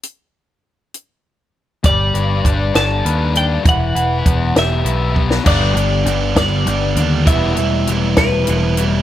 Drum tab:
CC |------------|------------|------------|x-----------|
HH |x-----x-----|x-x-x-x-x-x-|x-x-x-x-x---|--x-x-x-x-x-|
SD |------------|------o-----|------o----o|------o-----|
BD |------------|o---o-------|o---o-----o-|o-----o-----|

CC |------------|
HH |x-x-x-x-x-x-|
SD |------o-----|
BD |o-----o-----|